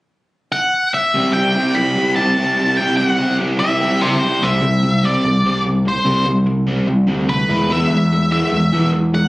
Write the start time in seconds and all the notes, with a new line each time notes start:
0.52 F#5
0.94 E5
1.14 C3 G3 C4 E4 G4
1.33 E4 G4 G5
1.37 C4
1.54 G3 C4 E4 G4
1.75 C3 G3 C4 E4 G4 B5
1.95 G3 C4 E4 G4
2.16 C3 G3 C4 E4 G4 A5
2.37 G3 C4 E4 G4
2.57 C4 E4 G4
2.77 C3 G3 C4 G5
2.81 E4 G4
2.97 E4 G4 F#5
3.02 C4
3.20 G3 C4 E4 G4
3.39 C3 G3 C4 E4 G4
3.60 G3 C4 E4 G4 E5
3.81 C3 G3 C4 E4 G4
4.01 G3 C4 E4 G4 C5
4.22 C3 G3 C4 E4 G4
4.42 C2 C3 G3 C4 E5
4.62 C2 C3 G3
4.84 C3 G3
5.04 C3 G3 C4 D5
5.25 C2 C3 G3
5.44 C2 C3 G3 C4
5.65 C3 G3
5.86 C3 G3 C5
6.05 C2 C3 G3 C4
6.25 C2 C3 G3
6.46 C3 G3
6.67 C3 G3 C4
6.87 C2 C3 G3
7.07 D2 C3 G3 C4
7.28 C3 G3 B4
7.48 E2 E3 G#3 B3
7.69 E3 G#3 B3 E5
7.90 E2 E3 G#3
8.12 E3 G#3
8.32 E3 G#3 B3 E5
8.52 E2 E3 G#3
8.72 E2 E3 G#3 B3
8.94 E3 G#3
9.14 E3 G#3 F#5